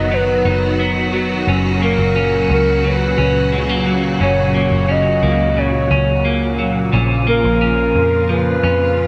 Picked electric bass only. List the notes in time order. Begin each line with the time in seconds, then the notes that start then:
Already playing: F#1
0.45 F#1
1.47 F#1
1.98 F#1
2.49 C#2
3.18 C#2
4.20 F#1
4.71 F#1
5.23 C#2
5.91 C#2
6.93 A#1
7.44 A#1
7.95 F2
8.63 F2